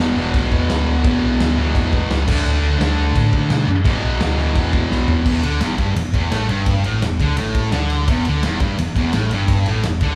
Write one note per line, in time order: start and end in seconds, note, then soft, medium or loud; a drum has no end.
0.00 0.14 E1 medium
0.00 0.20 E2 medium
0.00 0.16 B2 medium
0.00 0.15 E3 loud
0.16 0.32 E1 loud
0.16 1.04 B2 medium
0.16 1.03 E3 medium
0.16 snare soft
0.21 1.02 E2 medium
0.34 0.50 B1 loud
0.34 kick medium
0.34 crash medium
0.51 0.67 E2 medium
0.51 kick medium
0.69 0.85 D2 medium
0.69 snare loud
0.69 crash medium
0.87 1.02 D2 medium
1.03 1.20 E1 medium
1.03 1.55 E2 medium
1.03 1.57 B2 loud
1.03 kick loud
1.03 crash medium
1.08 1.55 E3 loud
1.22 1.38 B1 medium
1.39 1.70 D2 medium
1.39 snare loud
1.39 crash medium
1.56 2.27 B2 medium
1.56 2.26 E3 medium
1.61 2.28 E2 medium
1.75 2.06 E2 loud
1.75 kick medium
1.75 crash medium
1.93 kick medium
2.10 2.25 C#2 medium
2.10 snare loud
2.10 crash medium
2.27 2.43 D2 medium
2.27 2.77 D3 loud
2.27 2.80 A3 loud
2.27 kick loud
2.27 crash loud
2.31 2.81 D4 loud
2.45 2.60 D2 loud
2.45 crash medium
2.61 2.77 D2 medium
2.78 2.95 D2 medium
2.78 3.65 D3 medium
2.78 3.67 A3 medium
2.78 snare loud
2.78 crash medium
2.83 3.68 D4 loud
2.98 3.13 D2 medium
3.15 3.31 A2 loud
3.15 kick medium
3.15 crash medium
3.33 3.48 D3 medium
3.33 kick medium
3.50 3.65 B2 medium
3.50 snare loud
3.50 crash medium
3.67 3.83 F#2 medium
3.84 4.01 E1 medium
3.84 4.36 E2 medium
3.84 4.38 B2 medium
3.84 kick loud
3.84 crash medium
3.90 4.36 E3 loud
4.03 4.18 B1 medium
4.20 4.51 D2 medium
4.20 snare loud
4.20 crash medium
4.37 5.25 B2 medium
4.37 5.24 E3 medium
4.37 snare soft
4.42 5.23 E2 medium
4.55 4.86 E2 loud
4.55 kick medium
4.55 crash medium
4.73 kick medium
4.91 5.06 B1 medium
4.91 snare medium
5.08 5.23 E1 medium
5.08 floor tom loud
5.25 5.42 E1 medium
5.25 5.42 E2 loud
5.25 kick loud
5.25 crash loud
5.42 5.59 D2 medium
5.42 5.60 D3 medium
5.42 ride medium
5.61 5.77 E1 medium
5.61 5.77 E2 loud
5.61 snare loud
5.61 ride loud
5.77 5.94 G1 medium
5.77 5.95 G2 medium
5.77 kick medium
5.77 ride medium
5.95 6.12 E1 medium
5.95 6.10 E2 medium
5.95 ride loud
6.14 6.30 E1 medium
6.14 6.31 E2 medium
6.14 kick medium
6.14 ride medium
6.30 6.48 A1 medium
6.30 6.48 A2 loud
6.30 snare loud
6.30 ride medium
6.49 6.82 G1 medium
6.49 6.83 G2 loud
6.49 ride medium
6.66 kick loud
6.66 ride medium
6.84 7.00 A1 medium
6.84 7.01 A2 loud
6.84 ride medium
7.02 7.18 E1 medium
7.02 7.16 E2 medium
7.02 snare loud
7.02 ride medium
7.19 7.36 D2 medium
7.19 7.37 D3 medium
7.19 kick medium
7.19 ride medium
7.37 7.70 A1 loud
7.37 7.72 A2 loud
7.37 ride loud
7.54 kick medium
7.54 ride medium
7.72 8.05 D2 medium
7.72 8.07 D3 loud
7.72 snare loud
7.72 ride medium
7.90 ride medium
8.08 8.24 E1 medium
8.08 8.25 E2 loud
8.08 kick loud
8.08 ride loud
8.25 8.43 D2 loud
8.25 8.43 D3 medium
8.25 ride medium
8.43 8.60 E1 medium
8.43 8.61 E2 loud
8.43 snare loud
8.43 ride medium
8.60 8.77 G1 loud
8.60 8.78 G2 loud
8.60 kick medium
8.60 ride medium
8.78 8.95 E1 medium
8.78 8.92 E2 medium
8.78 ride loud
8.96 9.12 E1 medium
8.96 9.13 E2 medium
8.96 kick medium
8.96 ride medium
9.13 9.29 A1 medium
9.13 9.31 A2 loud
9.13 snare loud
9.13 ride medium
9.31 9.64 G1 medium
9.31 9.66 G2 loud
9.31 ride medium
9.48 kick loud
9.48 ride loud
9.66 9.82 A1 medium
9.66 9.84 A2 loud
9.66 ride medium
9.83 10.00 E1 medium
9.83 9.98 E2 medium
9.83 snare loud
9.83 ride loud
10.01 10.15 D2 medium
10.01 10.15 D3 loud
10.01 kick medium
10.01 ride medium